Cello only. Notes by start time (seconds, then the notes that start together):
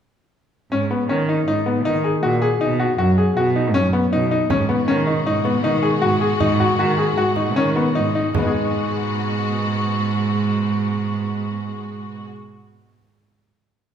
0.71 G#2
1.09 D#3
1.48 G#2
1.85 D#3
2.23 A#2
2.61 B2
2.98 F#2
3.37 B2
3.74 F#2
4.12 B2
4.50 G#2
4.88 D#3
5.27 G#2
5.64 D#3
6.02 G#2
6.40 G#2
6.78 D#3
7.17 G#2
7.56 D#3
7.95 G#2
8.35 G#2